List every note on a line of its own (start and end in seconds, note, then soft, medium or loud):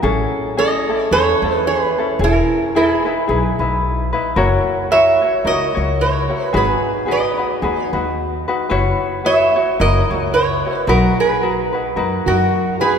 0.02 0.23 A1 loud
0.02 0.57 C#4 medium
0.02 0.59 E4 medium
0.02 0.57 G#4 medium
0.02 0.58 A4 medium
0.57 0.89 C#4 medium
0.57 0.89 E4 medium
0.57 0.89 G#4 medium
0.57 0.88 A4 medium
0.57 1.09 A4 medium
0.57 1.12 D#5 medium
0.89 1.12 C#4 soft
0.89 1.13 E4 soft
0.89 1.12 A4 medium
1.11 1.32 E2 medium
1.11 1.43 C#4 medium
1.11 1.44 E4 medium
1.11 1.43 G#4 medium
1.11 1.63 A4 medium
1.11 1.42 A4 medium
1.11 1.56 C#5 loud
1.42 1.93 E2 medium
1.42 1.98 C#4 soft
1.42 1.99 E4 soft
1.42 1.97 A4 soft
1.56 1.67 B4 loud
1.67 2.17 G#4 medium
1.67 2.22 B4 medium
1.98 2.22 C#4 soft
1.98 2.21 E4 soft
1.98 2.21 A4 medium
2.19 2.40 E1 loud
2.19 2.76 E4 medium
2.19 2.74 G#4 medium
2.24 2.73 E4 medium
2.24 2.78 A#4 medium
2.75 3.06 D#4 medium
2.75 3.05 E4 medium
2.75 3.80 E4 medium
2.75 3.06 G#4 medium
2.75 3.80 G#4 medium
2.75 3.04 B4 medium
3.05 3.28 D#4 soft
3.05 3.29 E4 medium
3.05 3.29 B4 medium
3.28 3.49 B1 medium
3.28 3.60 D#4 medium
3.28 3.59 E4 medium
3.28 3.59 G#4 medium
3.28 3.59 B4 medium
3.59 4.10 B1 medium
3.59 4.13 D#4 soft
3.59 4.13 E4 soft
3.59 4.11 B4 medium
4.13 4.37 D#4 soft
4.13 4.36 E4 soft
4.13 4.37 B4 medium
4.36 4.57 F#1 loud
4.36 4.90 E4 medium
4.36 4.92 F#4 medium
4.36 4.90 A#4 medium
4.36 4.91 C#5 medium
4.91 5.22 E4 medium
4.91 5.22 F#4 medium
4.91 5.21 A#4 medium
4.91 5.42 C#5 medium
4.91 5.20 C#5 medium
4.91 5.47 E5 loud
5.22 5.44 E4 soft
5.22 5.45 F#4 soft
5.22 5.44 C#5 soft
5.45 5.65 C#2 medium
5.45 5.76 E4 medium
5.45 5.75 F#4 medium
5.45 5.74 A#4 medium
5.45 5.97 A#4 medium
5.45 5.73 C#5 medium
5.45 6.01 D#5 loud
5.75 6.27 C#2 medium
5.75 6.29 E4 soft
5.75 6.29 F#4 soft
5.75 6.27 C#5 medium
6.01 6.51 A#4 medium
6.01 6.45 C#5 medium
6.28 6.53 E4 soft
6.28 6.53 F#4 medium
6.28 6.52 C#5 medium
6.45 6.56 B4 medium
6.53 6.74 G#1 loud
6.53 7.06 D#4 medium
6.53 7.07 F#4 medium
6.53 7.05 G#4 medium
6.53 7.06 G#4 medium
6.53 7.08 B4 medium
6.57 7.10 B4 medium
7.06 7.39 D#4 medium
7.06 7.38 F#4 medium
7.06 7.38 G#4 medium
7.06 7.36 B4 medium
7.11 8.14 B4 medium
7.11 7.83 D#5 medium
7.37 7.61 D#4 soft
7.37 7.62 F#4 soft
7.37 7.61 B4 soft
7.62 7.82 D#2 medium
7.62 7.93 D#4 medium
7.62 7.93 F#4 medium
7.62 7.93 G#4 medium
7.62 7.92 B4 medium
7.83 8.15 C#5 medium
7.93 8.43 D#2 medium
7.93 8.48 D#4 soft
7.93 8.48 F#4 medium
7.93 8.47 B4 medium
8.48 8.70 D#4 medium
8.48 8.70 F#4 medium
8.48 8.68 B4 medium
8.70 8.91 F#1 medium
8.70 9.24 E4 medium
8.70 9.25 F#4 medium
8.70 9.24 B4 medium
8.70 9.25 C#5 medium
9.25 9.56 E4 medium
9.25 9.55 F#4 medium
9.25 9.55 B4 medium
9.25 9.54 C#5 medium
9.25 9.76 C#5 medium
9.25 9.81 E5 loud
9.55 9.78 E4 soft
9.55 9.79 F#4 medium
9.55 9.79 C#5 medium
9.79 10.00 F#1 medium
9.79 10.10 E4 medium
9.79 10.10 F#4 medium
9.79 10.10 A#4 medium
9.79 10.31 A#4 medium
9.79 10.09 C#5 medium
9.79 10.33 D#5 loud
10.10 10.61 C#2 medium
10.10 10.66 E4 soft
10.10 10.66 F#4 soft
10.10 10.63 C#5 medium
10.34 10.84 A#4 medium
10.34 10.78 C#5 medium
10.65 10.89 E4 soft
10.65 10.88 F#4 soft
10.65 10.87 C#5 medium
10.78 10.89 B4 medium
10.87 11.07 B1 loud
10.87 11.43 D#4 medium
10.87 11.43 F#4 medium
10.87 11.17 F#4 medium
10.87 11.40 A#4 medium
10.87 11.17 A#4 medium
10.87 11.43 B4 medium
11.20 12.23 G#4 medium
11.20 12.23 B4 medium
11.42 11.73 D#4 medium
11.42 11.73 F#4 medium
11.42 11.73 A#4 medium
11.42 11.71 B4 medium
11.73 11.96 D#4 soft
11.73 11.96 F#4 soft
11.73 11.96 B4 soft
11.96 12.16 F#2 medium
11.96 12.27 D#4 medium
11.96 12.27 F#4 medium
11.96 12.27 A#4 medium
11.96 12.28 B4 medium
12.27 12.77 F#2 medium
12.27 12.82 D#4 soft
12.27 12.77 F#4 medium
12.27 12.81 F#4 soft
12.27 12.80 A#4 medium
12.81 12.98 D#4 soft
12.81 12.98 F#4 medium
12.81 12.98 G#4 medium
12.81 12.98 B4 medium